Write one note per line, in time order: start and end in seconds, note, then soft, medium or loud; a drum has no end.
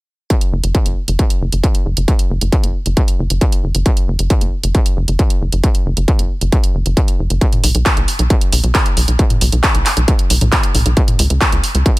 0.30 kick loud
0.30 closed hi-hat medium
0.41 closed hi-hat medium
0.52 0.61 F#1 medium
0.64 0.72 F#1 medium
0.64 closed hi-hat medium
0.75 kick loud
0.75 closed hi-hat medium
0.86 0.95 F#1 medium
0.86 closed hi-hat medium
1.08 1.17 F#1 medium
1.08 closed hi-hat medium
1.19 kick loud
1.19 closed hi-hat medium
1.30 closed hi-hat medium
1.41 1.50 F#1 medium
1.52 1.61 F#1 medium
1.52 closed hi-hat medium
1.64 kick loud
1.64 closed hi-hat medium
1.75 closed hi-hat medium
1.86 1.95 F#1 medium
1.97 2.06 F#1 medium
1.97 closed hi-hat medium
2.08 kick loud
2.08 closed hi-hat medium
2.19 closed hi-hat medium
2.30 2.39 F#1 medium
2.41 2.50 F#1 medium
2.41 closed hi-hat medium
2.52 kick loud
2.52 closed hi-hat medium
2.64 2.72 F#1 medium
2.64 closed hi-hat medium
2.86 2.95 F#1 medium
2.86 closed hi-hat medium
2.97 kick loud
2.97 closed hi-hat medium
3.08 closed hi-hat medium
3.19 3.28 F#1 medium
3.30 3.39 F#1 medium
3.30 closed hi-hat medium
3.41 kick loud
3.41 closed hi-hat medium
3.52 closed hi-hat medium
3.64 3.72 F#1 medium
3.75 3.83 F#1 medium
3.75 closed hi-hat medium
3.86 kick loud
3.86 closed hi-hat medium
3.97 closed hi-hat medium
4.08 4.17 F#1 medium
4.19 4.28 F#1 medium
4.19 closed hi-hat medium
4.30 kick loud
4.30 closed hi-hat medium
4.41 4.50 F#1 medium
4.41 closed hi-hat medium
4.63 4.72 F#1 medium
4.63 closed hi-hat medium
4.75 kick loud
4.75 closed hi-hat medium
4.86 closed hi-hat medium
4.97 5.06 F#1 medium
5.08 5.17 F#1 medium
5.08 closed hi-hat medium
5.19 kick loud
5.19 closed hi-hat medium
5.30 closed hi-hat medium
5.41 5.50 F#1 medium
5.52 5.61 F#1 medium
5.52 closed hi-hat medium
5.64 kick loud
5.64 closed hi-hat medium
5.75 closed hi-hat medium
5.86 5.95 F#1 medium
5.97 6.06 F#1 medium
5.97 closed hi-hat medium
6.08 kick loud
6.08 closed hi-hat medium
6.19 6.28 F#1 medium
6.19 closed hi-hat medium
6.41 6.50 F#1 medium
6.41 closed hi-hat medium
6.52 kick loud
6.52 closed hi-hat medium
6.64 closed hi-hat medium
6.75 6.83 F#1 medium
6.86 6.95 F#1 medium
6.86 closed hi-hat medium
6.97 kick loud
6.97 closed hi-hat medium
7.08 closed hi-hat medium
7.19 7.28 F#1 medium
7.30 7.39 F#1 medium
7.30 closed hi-hat medium
7.41 kick loud
7.41 closed hi-hat medium
7.53 closed hi-hat medium
7.53 mid tom medium
7.64 7.72 B1 medium
7.64 open hi-hat loud
7.75 7.83 B1 medium
7.75 closed hi-hat medium
7.86 kick loud
7.86 clap loud
7.86 closed hi-hat medium
7.97 8.06 B1 medium
7.97 closed hi-hat medium
8.08 open hi-hat medium
8.19 8.28 B1 medium
8.19 closed hi-hat medium
8.30 kick loud
8.30 closed hi-hat medium
8.41 closed hi-hat medium
8.52 8.61 B1 loud
8.52 open hi-hat loud
8.64 8.72 B1 medium
8.64 closed hi-hat medium
8.75 kick loud
8.75 clap loud
8.75 closed hi-hat medium
8.86 closed hi-hat medium
8.97 9.06 B1 medium
8.97 open hi-hat medium
9.08 9.17 B1 medium
9.08 closed hi-hat medium
9.19 kick loud
9.19 closed hi-hat medium
9.30 closed hi-hat medium
9.30 mid tom medium
9.41 9.50 B1 loud
9.41 open hi-hat loud
9.52 9.61 B1 medium
9.52 closed hi-hat medium
9.63 kick loud
9.63 clap loud
9.63 closed hi-hat medium
9.75 9.83 B1 medium
9.75 closed hi-hat medium
9.86 clap medium
9.86 open hi-hat medium
9.97 10.06 B1 medium
9.97 closed hi-hat medium
10.08 kick loud
10.08 closed hi-hat medium
10.19 closed hi-hat medium
10.30 10.39 B1 loud
10.30 open hi-hat loud
10.41 10.50 B1 medium
10.41 closed hi-hat medium
10.41 mid tom medium
10.52 kick loud
10.52 clap loud
10.52 closed hi-hat medium
10.63 closed hi-hat medium
10.75 10.83 B1 medium
10.75 open hi-hat medium
10.75 mid tom medium
10.86 10.95 B1 medium
10.86 closed hi-hat medium
10.97 kick loud
10.97 closed hi-hat medium
11.08 closed hi-hat medium
11.08 mid tom medium
11.19 11.28 C#2 medium
11.19 open hi-hat loud
11.30 11.39 C#2 medium
11.30 closed hi-hat medium
11.41 kick loud
11.41 clap loud
11.41 closed hi-hat medium
11.52 11.61 C#2 medium
11.52 closed hi-hat medium
11.64 open hi-hat medium
11.75 11.83 C#2 medium
11.75 closed hi-hat medium
11.86 kick loud
11.86 closed hi-hat medium